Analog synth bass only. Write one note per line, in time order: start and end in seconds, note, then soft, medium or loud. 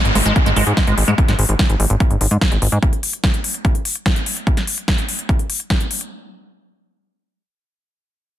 0.05 0.11 G#1 medium
0.15 0.22 G#1 loud
0.26 0.32 G#1 loud
0.46 0.52 G#1 medium
0.56 0.63 G#1 loud
0.67 0.73 G#2 medium
0.87 0.93 G#1 medium
0.98 1.04 G#1 loud
1.08 1.14 G#2 loud
1.28 1.35 G#1 medium
1.39 1.45 G#1 loud
1.49 1.55 G#1 medium
1.70 1.76 G#1 medium
1.80 1.86 G#1 loud
1.90 1.96 G#1 medium
2.11 2.17 G#1 medium
2.21 2.27 G#1 medium
2.31 2.37 G#2 medium
2.52 2.58 G#1 medium
2.62 2.68 G#1 loud
2.72 2.78 G#2 loud